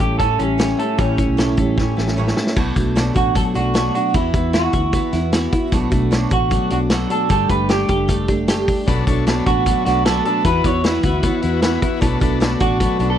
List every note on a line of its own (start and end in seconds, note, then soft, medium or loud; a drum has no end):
0.00 0.17 A1 medium
0.00 0.97 A2 medium
0.00 0.19 G3 soft
0.00 0.39 A3 medium
0.00 0.19 C#4 medium
0.00 0.20 C#4 soft
0.00 0.19 E4 soft
0.00 0.18 G4 medium
0.00 1.38 A4 medium
0.19 0.36 A2 medium
0.19 0.39 E3 medium
0.19 0.40 G3 medium
0.19 0.40 C#4 medium
0.19 0.38 E4 medium
0.19 0.40 A4 loud
0.19 kick medium
0.19 closed hi-hat medium
0.39 0.73 A1 medium
0.39 0.58 G3 soft
0.39 0.78 A3 medium
0.39 0.80 C#4 medium
0.39 0.59 C#4 soft
0.39 0.59 E4 soft
0.39 closed hi-hat medium
0.58 0.78 A2 medium
0.58 0.79 E3 medium
0.58 0.79 G3 medium
0.58 0.78 C#4 medium
0.58 0.76 E4 medium
0.58 snare loud
0.58 closed hi-hat medium
0.77 0.98 G3 soft
0.77 1.57 A3 medium
0.77 0.98 C#4 soft
0.77 0.98 E4 medium
0.77 0.99 A4 medium
0.77 closed hi-hat medium
0.98 1.24 A1 medium
0.98 1.18 A2 medium
0.98 1.18 E3 medium
0.98 1.19 G3 medium
0.98 2.14 C#4 medium
0.98 1.18 C#4 medium
0.98 1.16 E4 medium
0.98 kick medium
0.98 closed hi-hat medium
1.17 1.37 G3 soft
1.17 1.38 C#4 soft
1.17 1.38 E4 medium
1.17 kick medium
1.17 closed hi-hat medium
1.28 1.54 B1 medium
1.37 1.57 A2 medium
1.37 1.58 E3 medium
1.37 1.58 G3 medium
1.37 1.58 C#4 medium
1.37 1.56 E4 medium
1.37 2.61 A4 medium
1.37 snare loud
1.37 closed hi-hat medium
1.57 1.75 A1 medium
1.57 1.78 G3 soft
1.57 1.97 A3 medium
1.57 1.78 C#4 medium
1.57 1.77 E4 soft
1.57 kick medium
1.57 closed hi-hat medium
1.77 1.94 A2 medium
1.77 1.97 E3 medium
1.77 1.98 G3 medium
1.77 1.97 C#4 medium
1.77 1.96 E4 medium
1.77 kick medium
1.77 snare medium
1.97 2.31 A1 medium
1.97 2.17 G3 soft
1.97 2.35 A3 medium
1.97 2.18 C#4 medium
1.97 2.17 E4 medium
1.97 snare medium
2.08 snare medium
2.17 2.37 A2 medium
2.17 2.37 E3 medium
2.17 2.37 G3 medium
2.17 2.37 C#4 medium
2.17 2.35 E4 medium
2.27 snare medium
2.37 2.57 G3 soft
2.37 2.60 A3 medium
2.37 2.57 C#4 soft
2.37 2.57 E4 medium
2.37 snare medium
2.47 snare medium
2.56 2.74 B1 medium
2.56 2.76 B2 medium
2.56 2.76 F#3 medium
2.56 2.77 A3 medium
2.56 2.77 D4 medium
2.56 2.75 F#4 medium
2.56 kick medium
2.56 crash medium
2.76 3.10 B1 medium
2.76 2.96 A3 soft
2.76 2.96 D4 medium
2.76 2.96 F#4 medium
2.76 kick medium
2.76 closed hi-hat medium
2.95 3.16 B2 medium
2.95 3.16 F#3 medium
2.95 3.16 A3 medium
2.95 3.15 D4 medium
2.95 3.13 F#4 medium
2.95 snare loud
2.95 closed hi-hat medium
3.14 3.41 A1 medium
3.14 3.35 A3 soft
3.14 3.36 D4 soft
3.14 3.35 F#4 medium
3.14 kick medium
3.14 closed hi-hat medium
3.35 3.55 F#3 medium
3.35 3.55 A3 medium
3.35 3.55 D4 medium
3.35 3.53 F#4 medium
3.35 3.41 A4 loud
3.35 kick medium
3.35 closed hi-hat medium
3.54 3.89 B1 medium
3.54 3.74 A3 soft
3.54 3.74 D4 soft
3.54 3.75 F#4 medium
3.54 3.94 F#4 medium
3.54 closed hi-hat medium
3.74 3.94 B2 medium
3.74 3.95 F#3 medium
3.74 3.95 A3 medium
3.74 3.95 D4 medium
3.74 3.93 F#4 medium
3.74 snare loud
3.74 closed hi-hat medium
3.94 4.14 A3 soft
3.94 4.15 D4 soft
3.94 4.14 F#4 soft
3.94 4.15 F#4 medium
3.94 closed hi-hat medium
4.14 4.31 E2 medium
4.14 4.34 E3 medium
4.14 4.34 B3 medium
4.14 4.54 E4 medium
4.14 4.35 E4 medium
4.14 4.33 F#4 medium
4.14 kick loud
4.14 closed hi-hat medium
4.34 4.68 E2 medium
4.34 4.53 B3 soft
4.34 4.54 E4 soft
4.34 4.54 F#4 soft
4.34 kick medium
4.34 closed hi-hat medium
4.53 4.73 E3 medium
4.53 4.74 B3 medium
4.53 4.73 E4 medium
4.53 5.49 F#4 medium
4.53 4.71 F#4 medium
4.53 snare loud
4.53 closed hi-hat medium
4.73 4.99 D2 medium
4.73 4.93 B3 soft
4.73 4.94 E4 soft
4.73 4.93 F#4 soft
4.73 kick medium
4.73 closed hi-hat medium
4.92 5.13 E3 medium
4.92 5.13 B3 medium
4.92 5.13 E4 medium
4.92 5.11 F#4 medium
4.92 kick medium
4.92 closed hi-hat medium
5.13 5.47 E2 medium
5.13 5.32 B3 soft
5.13 5.33 E4 medium
5.13 5.33 F#4 medium
5.13 snare soft
5.13 closed hi-hat medium
5.32 5.52 E3 medium
5.32 5.53 B3 medium
5.32 5.53 E4 medium
5.32 5.51 F#4 medium
5.32 snare loud
5.32 closed hi-hat loud
5.52 5.73 B3 soft
5.52 5.73 E4 medium
5.52 5.72 F#4 medium
5.52 kick medium
5.52 closed hi-hat medium
5.72 5.89 B1 medium
5.72 5.92 B2 medium
5.72 5.92 F#3 medium
5.72 5.93 A3 medium
5.72 5.92 D4 medium
5.72 5.90 F#4 medium
5.72 kick medium
5.72 closed hi-hat medium
5.91 6.26 B1 medium
5.91 6.11 A3 medium
5.91 6.12 D4 medium
5.91 6.11 F#4 medium
5.91 kick medium
5.91 closed hi-hat medium
6.11 6.31 B2 medium
6.11 6.31 F#3 medium
6.11 6.32 A3 medium
6.11 6.31 D4 medium
6.11 6.29 F#4 medium
6.11 snare loud
6.11 closed hi-hat medium
6.30 6.57 A1 medium
6.30 6.50 A3 soft
6.30 6.52 D4 soft
6.30 6.51 F#4 medium
6.30 6.69 F#4 medium
6.30 kick medium
6.30 closed hi-hat medium
6.50 6.70 F#3 medium
6.50 6.71 A3 medium
6.50 6.71 D4 medium
6.50 6.69 F#4 medium
6.50 kick medium
6.50 closed hi-hat medium
6.70 7.05 B1 medium
6.70 6.90 A3 soft
6.70 6.91 D4 soft
6.70 6.90 F#4 soft
6.70 6.77 F#4 medium
6.70 closed hi-hat medium
6.90 7.10 B2 medium
6.90 7.11 F#3 medium
6.90 7.11 A3 medium
6.90 7.10 D4 medium
6.90 7.09 F#4 medium
6.90 7.10 A4 medium
6.90 snare loud
6.90 closed hi-hat medium
7.10 7.29 A3 soft
7.10 7.30 D4 soft
7.10 7.30 F#4 soft
7.10 7.29 A4 medium
7.10 closed hi-hat medium
7.29 7.47 G1 loud
7.29 7.49 G3 medium
7.29 7.50 A3 medium
7.29 7.50 D4 medium
7.29 7.48 G4 medium
7.29 7.50 A4 medium
7.29 kick medium
7.29 closed hi-hat medium
7.49 7.83 G1 medium
7.49 7.69 A3 soft
7.49 7.70 D4 soft
7.49 7.69 G4 medium
7.49 7.70 B4 loud
7.49 kick medium
7.49 closed hi-hat medium
7.69 7.89 G3 medium
7.69 7.90 A3 medium
7.69 7.90 D4 medium
7.69 8.07 G4 medium
7.69 7.88 G4 medium
7.69 snare loud
7.69 closed hi-hat medium
7.88 8.64 F#1 medium
7.88 8.09 D4 soft
7.88 8.09 G4 medium
7.88 kick medium
7.88 closed hi-hat medium
7.92 8.08 A3 soft
8.08 8.28 G3 medium
8.08 8.29 A3 medium
8.08 8.29 D4 medium
8.08 8.27 G4 medium
8.08 kick medium
8.08 closed hi-hat medium
8.28 8.47 A3 soft
8.28 8.48 D4 soft
8.28 8.48 G4 medium
8.28 kick medium
8.28 closed hi-hat medium
8.48 8.68 G3 medium
8.48 8.68 A3 medium
8.48 8.68 D4 medium
8.48 8.66 G4 loud
8.48 snare loud
8.48 closed hi-hat loud
8.67 8.87 A3 soft
8.67 8.88 D4 soft
8.67 8.87 G4 medium
8.67 kick medium
8.67 open hi-hat medium
8.87 9.04 B1 medium
8.87 9.07 B2 medium
8.87 9.07 F#3 medium
8.87 9.08 A3 medium
8.87 9.05 D4 loud
8.87 9.08 D4 medium
8.87 9.06 F#4 medium
8.87 9.05 A4 medium
8.87 9.06 B4 loud
8.87 kick medium
8.87 closed hi-hat medium
9.07 9.41 B1 medium
9.07 9.27 A3 soft
9.07 9.25 D4 loud
9.07 9.27 D4 medium
9.07 9.27 F#4 medium
9.07 9.25 A4 medium
9.07 9.26 C#5 loud
9.07 kick medium
9.07 closed hi-hat medium
9.26 9.46 B2 medium
9.26 9.47 F#3 medium
9.26 9.47 A3 medium
9.26 9.44 D4 medium
9.26 9.47 D4 loud
9.26 9.45 F#4 medium
9.26 9.45 A4 medium
9.26 9.45 B4 medium
9.26 snare loud
9.26 closed hi-hat medium
9.45 9.72 A1 medium
9.45 9.64 D4 medium
9.45 9.67 D4 soft
9.45 9.66 F#4 soft
9.45 9.84 F#4 medium
9.45 9.64 A4 medium
9.45 9.65 B4 medium
9.45 kick medium
9.45 closed hi-hat medium
9.50 9.66 A3 soft
9.65 9.86 F#3 medium
9.65 9.86 A3 medium
9.65 9.84 D4 medium
9.65 9.86 D4 medium
9.65 9.84 F#4 medium
9.65 9.84 A4 medium
9.65 9.84 B4 medium
9.65 kick medium
9.65 closed hi-hat medium
9.85 10.20 B1 medium
9.85 10.06 A3 soft
9.85 10.03 D4 medium
9.85 10.06 D4 soft
9.85 10.05 F#4 medium
9.85 10.05 F#4 soft
9.85 10.04 A4 medium
9.85 10.04 B4 medium
9.85 snare soft
9.85 closed hi-hat medium
10.05 10.25 B2 medium
10.05 10.26 F#3 medium
10.05 10.26 A3 medium
10.05 10.23 D4 medium
10.05 10.26 D4 medium
10.05 10.25 F#4 medium
10.05 10.24 A4 medium
10.05 10.24 B4 loud
10.05 snare loud
10.05 closed hi-hat medium
10.25 10.43 D4 medium
10.25 10.46 D4 soft
10.25 10.45 F#4 soft
10.25 10.45 A4 medium
10.25 10.43 A4 medium
10.25 10.44 B4 medium
10.25 closed hi-hat medium
10.29 10.46 A3 soft
10.44 10.62 E2 medium
10.44 10.65 E3 medium
10.44 10.65 B3 medium
10.44 10.62 E4 medium
10.44 10.65 E4 medium
10.44 10.63 F#4 medium
10.44 10.66 B4 medium
10.44 10.63 B4 loud
10.44 kick loud
10.44 closed hi-hat medium
10.63 10.98 E2 medium
10.63 10.82 E4 medium
10.63 10.85 E4 medium
10.63 10.82 F#4 medium
10.63 10.84 F#4 soft
10.63 10.83 B4 medium
10.63 10.85 C#5 loud
10.63 kick medium
10.63 closed hi-hat medium
10.68 10.85 B3 soft
10.83 11.04 E3 medium
10.83 11.05 B3 medium
10.83 10.94 D4 medium
10.83 11.02 E4 medium
10.83 11.04 E4 medium
10.83 11.02 F#4 medium
10.83 11.02 B4 medium
10.83 11.24 B4 medium
10.83 snare loud
10.83 closed hi-hat medium
10.94 11.42 E4 soft
11.03 11.29 D2 medium
11.03 11.21 E4 medium
11.03 11.24 E4 soft
11.03 11.21 F#4 medium
11.03 11.23 F#4 medium
11.03 11.22 B4 medium
11.03 kick medium
11.03 closed hi-hat medium
11.07 11.23 B3 soft
11.22 11.43 E3 medium
11.22 11.44 B3 medium
11.22 11.40 E4 medium
11.22 11.43 E4 medium
11.22 11.41 F#4 medium
11.22 11.41 C#5 medium
11.22 kick medium
11.22 closed hi-hat medium
11.27 11.41 F#4 medium
11.41 11.77 E2 medium
11.41 11.60 E4 medium
11.41 11.63 E4 soft
11.41 11.60 F#4 medium
11.41 11.62 F#4 medium
11.41 11.61 B4 medium
11.41 closed hi-hat medium
11.46 11.62 B3 soft
11.61 11.82 E3 medium
11.61 11.83 B3 medium
11.61 11.80 E4 loud
11.61 11.82 E4 loud
11.61 11.80 F#4 loud
11.61 11.81 F#4 medium
11.61 11.81 B4 loud
11.61 snare loud
11.61 closed hi-hat loud
11.81 12.02 B3 soft
11.81 12.00 E4 medium
11.81 12.02 E4 medium
11.81 12.02 F#4 medium
11.81 12.00 F#4 medium
11.81 12.00 B4 loud
11.81 kick medium
11.81 closed hi-hat medium
12.01 12.19 B1 loud
12.01 12.21 B2 medium
12.01 12.22 F#3 medium
12.01 12.22 A3 medium
12.01 12.19 D4 loud
12.01 12.21 D4 medium
12.01 12.19 F#4 medium
12.01 12.20 A4 loud
12.01 12.20 B4 loud
12.01 kick loud
12.01 closed hi-hat medium
12.20 12.55 B1 medium
12.20 12.40 A3 soft
12.20 12.39 D4 loud
12.20 12.41 D4 medium
12.20 12.40 F#4 medium
12.20 12.39 A4 loud
12.20 12.40 B4 loud
12.20 kick medium
12.20 closed hi-hat medium
12.40 12.60 B2 medium
12.40 12.61 F#3 medium
12.40 12.61 A3 loud
12.40 12.58 D4 medium
12.40 12.61 D4 medium
12.40 12.59 F#4 medium
12.40 12.59 A4 medium
12.40 12.59 B4 medium
12.40 snare loud
12.40 closed hi-hat medium
12.60 12.86 A1 medium
12.60 12.80 A3 soft
12.60 12.78 D4 medium
12.60 12.81 D4 soft
12.60 12.80 F#4 medium
12.60 13.10 F#4 medium
12.60 12.78 A4 medium
12.60 12.79 D5 medium
12.60 kick medium
12.60 closed hi-hat medium
12.79 13.00 F#3 medium
12.79 13.01 A3 medium
12.79 12.97 D4 medium
12.79 13.00 D4 medium
12.79 12.98 A4 medium
12.79 12.98 B4 medium
12.79 kick medium
12.79 closed hi-hat loud
12.83 12.98 F#4 medium
12.99 13.18 B1 medium
12.99 13.17 D4 medium
12.99 13.18 D4 soft
12.99 13.18 F#4 medium
12.99 13.18 A4 medium
12.99 13.18 B4 medium
12.99 closed hi-hat medium
13.03 13.18 A3 soft
13.10 13.18 A4 loud